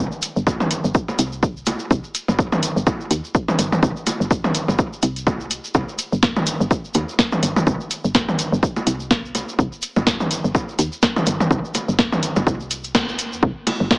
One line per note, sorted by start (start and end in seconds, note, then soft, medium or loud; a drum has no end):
0.12 shaker soft
0.22 closed hi-hat medium
0.22 shaker medium
0.36 0.79 G1 medium
0.36 shaker soft
0.47 kick loud
0.47 low bongo soft
0.47 shaker medium
0.60 mid tom medium
0.60 shaker soft
0.71 closed hi-hat medium
0.71 shaker medium
0.84 0.92 G1 medium
0.84 shaker soft
0.94 kick loud
0.94 shaker medium
1.08 low bongo soft
1.08 shaker soft
1.19 1.75 C2 loud
1.19 closed hi-hat medium
1.19 shaker medium
1.32 shaker soft
1.43 kick loud
1.43 shaker medium
1.57 shaker soft
1.66 closed hi-hat loud
1.66 low bongo soft
1.66 shaker medium
1.79 shaker soft
1.91 2.01 C2 loud
1.91 kick loud
1.91 shaker medium
2.04 shaker soft
2.15 closed hi-hat medium
2.15 shaker medium
2.28 2.71 G1 medium
2.28 low bongo soft
2.28 shaker soft
2.39 kick loud
2.39 shaker medium
2.52 mid tom medium
2.52 shaker soft
2.63 closed hi-hat medium
2.63 shaker medium
2.76 2.84 G1 medium
2.76 shaker soft
2.87 kick loud
2.87 low bongo soft
2.87 shaker medium
3.01 shaker soft
3.11 3.21 D#2 medium
3.11 closed hi-hat loud
3.11 shaker loud
3.25 shaker soft
3.35 kick loud
3.35 shaker medium
3.48 mid tom loud
3.48 low bongo soft
3.48 shaker soft
3.59 3.78 G1 loud
3.59 closed hi-hat loud
3.59 shaker loud
3.72 mid tom medium
3.72 shaker soft
3.83 3.93 C2 loud
3.83 kick loud
3.83 shaker medium
3.96 shaker soft
4.07 closed hi-hat medium
4.07 low bongo soft
4.07 shaker loud
4.20 4.63 G1 medium
4.20 shaker soft
4.31 kick loud
4.31 shaker medium
4.44 mid tom medium
4.44 shaker soft
4.55 closed hi-hat medium
4.55 shaker medium
4.68 4.76 G1 medium
4.68 low bongo soft
4.68 shaker soft
4.79 kick loud
4.79 shaker medium
4.93 shaker soft
5.02 5.59 C2 medium
5.02 closed hi-hat loud
5.02 shaker medium
5.16 closed hi-hat soft
5.16 shaker soft
5.27 kick loud
5.27 low bongo soft
5.27 shaker medium
5.40 shaker soft
5.51 closed hi-hat loud
5.51 shaker medium
5.64 shaker soft
5.74 5.85 C2 loud
5.74 kick loud
5.74 low bongo soft
5.74 shaker medium
5.89 shaker soft
5.99 closed hi-hat medium
5.99 shaker loud
6.12 6.55 G1 medium
6.12 shaker soft
6.23 kick loud
6.23 snare medium
6.23 shaker medium
6.37 mid tom medium
6.37 low bongo soft
6.37 shaker soft
6.47 closed hi-hat medium
6.47 shaker loud
6.60 6.68 G1 medium
6.60 shaker soft
6.71 kick loud
6.71 shaker soft
6.85 shaker soft
6.94 7.05 D#2 medium
6.94 closed hi-hat medium
6.94 low bongo soft
6.94 shaker medium
7.09 shaker soft
7.19 kick loud
7.19 snare medium
7.19 shaker soft
7.32 mid tom medium
7.32 shaker soft
7.43 7.62 G1 medium
7.43 closed hi-hat loud
7.43 shaker loud
7.56 mid tom medium
7.56 low bongo soft
7.56 shaker soft
7.67 7.77 C2 loud
7.67 kick loud
7.67 shaker soft
7.80 shaker soft
7.91 closed hi-hat medium
7.91 shaker medium
8.04 8.47 G1 medium
8.04 shaker soft
8.15 kick loud
8.15 snare medium
8.15 low bongo soft
8.15 shaker medium
8.29 mid tom medium
8.29 shaker soft
8.39 closed hi-hat medium
8.39 shaker medium
8.52 8.60 G1 medium
8.52 shaker soft
8.63 kick loud
8.63 shaker soft
8.76 low bongo soft
8.76 shaker soft
8.87 9.43 C2 medium
8.87 closed hi-hat medium
8.87 shaker medium
9.00 shaker soft
9.11 kick loud
9.11 snare medium
9.11 shaker medium
9.25 shaker soft
9.35 closed hi-hat medium
9.35 low bongo soft
9.35 shaker medium
9.49 shaker soft
9.59 9.69 C2 loud
9.59 kick loud
9.59 shaker soft
9.72 shaker soft
9.82 closed hi-hat medium
9.82 shaker medium
9.96 10.39 G1 medium
9.96 low bongo soft
9.96 shaker soft
10.07 kick loud
10.07 snare medium
10.07 shaker soft
10.20 mid tom medium
10.20 shaker soft
10.31 closed hi-hat medium
10.31 shaker medium
10.44 10.52 G1 medium
10.44 shaker soft
10.55 kick loud
10.55 low bongo soft
10.55 shaker medium
10.69 shaker soft
10.79 10.89 D#2 medium
10.79 closed hi-hat medium
10.79 shaker loud
10.92 shaker soft
11.02 kick loud
11.02 snare medium
11.02 shaker soft
11.16 mid tom medium
11.16 low bongo soft
11.16 shaker soft
11.26 11.46 G1 loud
11.26 closed hi-hat medium
11.26 shaker medium
11.40 mid tom medium
11.40 shaker soft
11.51 11.61 C2 loud
11.51 kick loud
11.51 shaker soft
11.65 shaker soft
11.74 closed hi-hat medium
11.74 low bongo soft
11.74 shaker medium
11.88 12.31 G1 medium
11.88 shaker soft
11.99 kick loud
11.99 snare medium
11.99 shaker medium
12.12 mid tom medium
12.12 shaker soft
12.23 closed hi-hat medium
12.23 shaker medium
12.36 12.44 G1 medium
12.36 low bongo soft
12.36 shaker soft
12.47 13.20 C2 medium
12.47 kick loud
12.47 shaker soft
12.60 shaker soft
12.71 closed hi-hat medium
12.71 shaker medium
12.84 closed hi-hat soft
12.84 shaker soft
12.95 kick loud
12.95 snare medium
12.95 low bongo soft
12.95 shaker medium
13.09 shaker soft
13.19 13.34 G1 medium
13.19 closed hi-hat medium
13.19 shaker medium
13.32 13.40 F2 medium
13.32 shaker soft
13.43 13.53 C2 loud
13.43 kick loud
13.67 closed hi-hat medium
13.67 ride medium
13.67 low bongo soft
13.80 13.98 G1 medium
13.91 kick loud
13.91 snare medium
13.91 low bongo medium